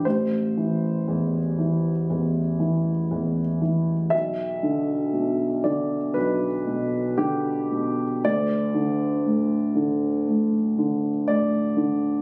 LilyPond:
<<
  \new Staff \with { instrumentName = "Grand piano" } { \time 4/4 \key g \mixolydian \tempo 4 = 59 c''2.~ c''8 r8 | e''4. d''8 b'4 g'4 | d''2. d''4 | }
  \new Staff \with { instrumentName = "Grand piano" } { \clef bass \time 4/4 \key g \mixolydian a,,8 e8 e,8 e8 e,8 e8 e,8 e8 | b,,8 d8 b,8 d8 b,,8 b,8 d8 b,8 | d,8 d8 a,8 d8 a,8 d8 a,8 d8 | }
>>